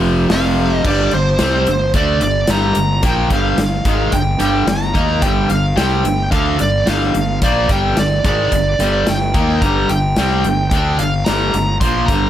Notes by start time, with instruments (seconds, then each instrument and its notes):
Already playing: fingered electric bass F1, overdriven electric guitar F2 C3 F3
0.29 fingered electric bass F1, overdriven electric guitar F2 C3 F3, lead electric guitar F5, snare, open hi-hat
0.76 lead electric guitar D#5
0.84 fingered electric bass G1, overdriven electric guitar G2 D3 G3, lead electric guitar D5, kick, crash
1.11 fingered electric bass G1, overdriven electric guitar G2 D3, lead electric guitar C5, closed hi-hat
1.39 fingered electric bass C2, overdriven electric guitar C3 G3 C4, snare, closed hi-hat
1.67 fingered electric bass G1, overdriven electric guitar G2 D3, closed hi-hat
1.94 fingered electric bass D2, overdriven electric guitar D3 A3 D4, lead electric guitar D5, kick, closed hi-hat
2.21 fingered electric bass G1, overdriven electric guitar G2 D3, lead electric guitar D5, closed hi-hat
2.47 fingered electric bass G1, overdriven electric guitar G2 D3 G3, lead electric guitar A#5, snare, closed hi-hat
2.75 fingered electric bass G1, overdriven electric guitar G2 D3, closed hi-hat
3.03 fingered electric bass A#1, overdriven electric guitar A#2 F3 A#3, lead electric guitar G5, kick, closed hi-hat
3.30 fingered electric bass G1, overdriven electric guitar G2 D3 G3, lead electric guitar F5, kick, closed hi-hat
3.57 fingered electric bass G1, overdriven electric guitar G2 D3, snare, closed hi-hat
3.85 fingered electric bass G#1, overdriven electric guitar G#2 D#3 G#3, kick, closed hi-hat
4.12 fingered electric bass G1, overdriven electric guitar G2 D3, lead electric guitar G5, kick, closed hi-hat
4.39 fingered electric bass G1, overdriven electric guitar G2 D3 G3, lead electric guitar G5, closed hi-hat
4.67 fingered electric bass G1, overdriven electric guitar G2 D3, lead electric guitar A#5, snare, closed hi-hat
4.81 snare
4.94 fingered electric bass D#2, overdriven electric guitar D#3 A#3 D#4, kick, closed hi-hat
5.22 fingered electric bass G1, overdriven electric guitar G2 D3 G3, lead electric guitar G5, kick, closed hi-hat
5.49 fingered electric bass G1, overdriven electric guitar G2 D3, lead electric guitar F5, closed hi-hat
5.76 fingered electric bass C2, overdriven electric guitar C3 G3 C4, lead electric guitar G5, snare, closed hi-hat
6.04 fingered electric bass G1, overdriven electric guitar G2 D3, closed hi-hat
6.31 fingered electric bass D2, overdriven electric guitar D3 A3 D4, lead electric guitar F5, kick, closed hi-hat
6.58 fingered electric bass G1, overdriven electric guitar G2 D3, lead electric guitar D5, closed hi-hat
6.86 fingered electric bass G1, overdriven electric guitar G2 D3 G3, lead electric guitar F5, snare, closed hi-hat
7.01 snare
7.15 fingered electric bass G1, overdriven electric guitar G2 D3, closed hi-hat
7.42 fingered electric bass A#1, overdriven electric guitar A#2 F3 A#3, lead electric guitar D5, kick, closed hi-hat
7.69 fingered electric bass G1, overdriven electric guitar G2 D3 G3, lead electric guitar G5, kick, closed hi-hat
7.97 fingered electric bass G1, overdriven electric guitar G2 D3, lead electric guitar D5, snare, closed hi-hat
8.24 fingered electric bass G#1, overdriven electric guitar G#2 D#3 G#3, lead electric guitar D5, kick, closed hi-hat
8.52 fingered electric bass G1, overdriven electric guitar G2 D3, kick, closed hi-hat
8.79 fingered electric bass G1, overdriven electric guitar G2 D3 G3, closed hi-hat
9.07 fingered electric bass G1, overdriven electric guitar G2 D3, lead electric guitar G5, snare, closed hi-hat
9.34 fingered electric bass D#2, overdriven electric guitar D#3 A#3 D#4, kick, closed hi-hat
9.61 fingered electric bass G1, overdriven electric guitar G2 D3 G3, lead electric guitar A#5, kick, closed hi-hat
9.89 fingered electric bass G1, overdriven electric guitar G2 D3, lead electric guitar G5, closed hi-hat
10.16 fingered electric bass C2, overdriven electric guitar C3 G3 C4, snare, closed hi-hat
10.44 fingered electric bass G1, overdriven electric guitar G2 D3, closed hi-hat
10.70 fingered electric bass D2, overdriven electric guitar D3 A3 D4, lead electric guitar G5, kick, closed hi-hat
10.99 fingered electric bass G1, overdriven electric guitar G2 D3, lead electric guitar F5, closed hi-hat
11.25 fingered electric bass G1, overdriven electric guitar G2 D3 G3, lead electric guitar A#5, snare, closed hi-hat
11.54 fingered electric bass G1, overdriven electric guitar G2 D3, closed hi-hat
11.81 fingered electric bass A#1, overdriven electric guitar A#2 F3 A#3, lead electric guitar C6, kick, closed hi-hat
12.06 fingered electric bass G1, overdriven electric guitar G2 D3, lead electric guitar A#5, kick, closed hi-hat
12.11 overdriven electric guitar G3